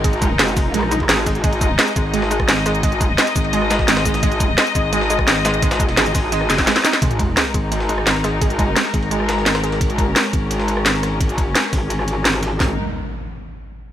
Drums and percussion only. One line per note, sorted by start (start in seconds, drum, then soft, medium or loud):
0.04 kick loud
0.04 closed hi-hat medium
0.04 ride medium
0.13 closed hi-hat soft
0.22 kick loud
0.22 closed hi-hat medium
0.22 ride medium
0.22 shaker medium
0.39 snare loud
0.39 closed hi-hat medium
0.39 ride medium
0.48 closed hi-hat soft
0.48 ride soft
0.48 shaker soft
0.57 kick loud
0.57 snare soft
0.57 closed hi-hat medium
0.57 open hi-hat medium
0.57 shaker medium
0.74 closed hi-hat medium
0.74 ride medium
0.83 cross-stick soft
0.91 closed hi-hat medium
0.91 ride medium
0.91 shaker medium
1.00 kick medium
1.09 snare loud
1.09 closed hi-hat medium
1.09 ride medium
1.18 cross-stick soft
1.26 kick medium
1.26 snare soft
1.26 closed hi-hat medium
1.26 ride medium
1.26 shaker medium
1.35 closed hi-hat soft
1.44 kick loud
1.44 closed hi-hat medium
1.44 ride medium
1.53 closed hi-hat soft
1.53 ride soft
1.61 kick loud
1.61 closed hi-hat medium
1.61 ride medium
1.61 shaker medium
1.79 snare loud
1.79 closed hi-hat medium
1.79 ride medium
1.87 closed hi-hat soft
1.87 shaker soft
1.96 kick loud
1.96 closed hi-hat medium
1.96 ride medium
1.96 shaker medium
2.14 closed hi-hat medium
2.14 ride medium
2.22 snare medium
2.31 closed hi-hat medium
2.31 ride medium
2.31 shaker medium
2.40 kick medium
2.40 cross-stick medium
2.48 snare loud
2.48 closed hi-hat medium
2.48 ride medium
2.57 snare soft
2.66 cross-stick soft
2.66 snare soft
2.66 closed hi-hat medium
2.66 ride medium
2.66 shaker medium
2.75 closed hi-hat soft
2.83 kick loud
2.83 closed hi-hat loud
2.83 ride medium
2.92 closed hi-hat soft
3.01 kick loud
3.01 closed hi-hat medium
3.01 ride medium
3.01 shaker medium
3.18 snare loud
3.18 closed hi-hat medium
3.18 ride medium
3.27 closed hi-hat soft
3.27 ride soft
3.27 shaker soft
3.36 kick loud
3.36 closed hi-hat medium
3.36 ride medium
3.36 shaker medium
3.44 ride soft
3.53 closed hi-hat medium
3.53 ride medium
3.62 cross-stick soft
3.71 snare loud
3.71 closed hi-hat medium
3.71 ride medium
3.71 shaker medium
3.79 kick medium
3.79 snare soft
3.88 snare loud
3.88 snare soft
3.88 closed hi-hat loud
3.88 ride medium
3.97 cross-stick soft
3.97 snare loud
3.97 ride medium
4.05 kick medium
4.05 snare soft
4.05 closed hi-hat medium
4.05 shaker medium
4.14 snare soft
4.14 closed hi-hat soft
4.14 ride medium
4.23 kick loud
4.23 closed hi-hat loud
4.23 ride medium
4.32 closed hi-hat soft
4.32 ride soft
4.40 kick loud
4.40 closed hi-hat medium
4.40 ride medium
4.40 shaker medium
4.58 snare loud
4.58 closed hi-hat loud
4.58 ride medium
4.66 closed hi-hat soft
4.66 shaker soft
4.75 kick loud
4.75 closed hi-hat medium
4.75 ride medium
4.75 shaker medium
4.93 closed hi-hat medium
4.93 ride medium
5.01 snare medium
5.10 closed hi-hat medium
5.10 ride medium
5.10 shaker medium
5.19 kick medium
5.19 cross-stick medium
5.27 snare loud
5.27 closed hi-hat medium
5.27 ride medium
5.36 snare soft
5.45 cross-stick soft
5.45 snare loud
5.45 closed hi-hat medium
5.45 ride medium
5.45 shaker medium
5.54 closed hi-hat soft
5.62 kick loud
5.62 snare soft
5.62 closed hi-hat loud
5.62 ride medium
5.71 snare loud
5.71 closed hi-hat soft
5.71 ride medium
5.71 shaker soft
5.80 kick loud
5.80 closed hi-hat medium
5.80 shaker medium
5.89 snare soft
5.89 ride medium
5.97 snare loud
5.97 closed hi-hat loud
5.97 ride medium
6.06 closed hi-hat soft
6.06 ride soft
6.06 shaker soft
6.15 kick loud
6.15 snare soft
6.15 closed hi-hat medium
6.15 open hi-hat medium
6.15 shaker medium
6.32 closed hi-hat loud
6.32 ride medium
6.41 cross-stick soft
6.50 snare medium
6.50 closed hi-hat medium
6.50 ride medium
6.50 shaker medium
6.58 kick medium
6.58 snare medium
6.58 closed hi-hat soft
6.58 ride soft
6.67 snare loud
6.67 snare medium
6.67 closed hi-hat loud
6.67 ride medium
6.76 snare loud
6.76 snare medium
6.76 ride medium
6.76 shaker soft
6.85 snare loud
6.85 closed hi-hat medium
6.85 ride medium
6.85 shaker medium
6.93 snare medium
6.93 closed hi-hat soft
7.02 kick loud
7.02 closed hi-hat loud
7.02 ride medium
7.11 closed hi-hat soft
7.11 ride soft
7.19 kick loud
7.19 closed hi-hat medium
7.19 ride medium
7.37 snare loud
7.37 closed hi-hat loud
7.37 ride medium
7.54 kick loud
7.54 closed hi-hat medium
7.54 ride medium
7.72 closed hi-hat medium
7.72 ride medium
7.80 snare medium
7.89 closed hi-hat medium
7.89 ride medium
7.98 cross-stick medium
8.07 snare loud
8.07 closed hi-hat medium
8.07 ride medium
8.15 snare soft
8.24 cross-stick soft
8.24 snare soft
8.24 closed hi-hat medium
8.24 ride medium
8.41 kick loud
8.41 closed hi-hat medium
8.41 ride medium
8.50 closed hi-hat soft
8.59 kick loud
8.59 closed hi-hat medium
8.59 ride medium
8.76 snare loud
8.76 closed hi-hat loud
8.76 ride medium
8.85 snare soft
8.85 ride soft
8.94 kick loud
8.94 closed hi-hat medium
8.94 ride medium
9.03 ride soft
9.11 closed hi-hat medium
9.11 ride medium
9.20 cross-stick soft
9.29 snare loud
9.29 closed hi-hat medium
9.29 ride medium
9.37 snare soft
9.46 snare soft
9.46 snare loud
9.46 closed hi-hat medium
9.46 ride medium
9.55 cross-stick medium
9.55 snare loud
9.55 ride medium
9.64 snare soft
9.64 closed hi-hat medium
9.72 snare soft
9.72 ride medium
9.81 kick loud
9.81 closed hi-hat medium
9.81 ride medium
9.90 closed hi-hat soft
9.90 ride soft
9.98 kick loud
9.98 closed hi-hat medium
9.98 ride medium
10.16 snare loud
10.16 closed hi-hat medium
10.16 ride medium
10.33 kick loud
10.33 closed hi-hat medium
10.33 ride medium
10.51 closed hi-hat medium
10.51 ride medium
10.60 snare medium
10.68 closed hi-hat medium
10.68 ride medium
10.77 cross-stick medium
10.86 snare loud
10.86 closed hi-hat medium
10.86 ride medium
10.94 snare soft
11.03 cross-stick soft
11.03 snare soft
11.03 closed hi-hat medium
11.03 ride medium
11.21 kick loud
11.21 closed hi-hat medium
11.21 ride medium
11.29 closed hi-hat soft
11.38 kick loud
11.38 closed hi-hat medium
11.38 ride medium
11.55 snare loud
11.55 closed hi-hat medium
11.55 ride medium
11.64 snare soft
11.64 ride soft
11.73 kick loud
11.73 snare soft
11.73 closed hi-hat medium
11.73 open hi-hat medium
11.90 closed hi-hat medium
11.90 ride medium
11.99 cross-stick soft
12.08 closed hi-hat medium
12.08 ride medium
12.25 snare loud
12.25 closed hi-hat medium
12.25 ride medium
12.34 cross-stick soft
12.43 snare soft
12.43 closed hi-hat medium
12.43 ride medium
12.60 kick loud
12.60 snare loud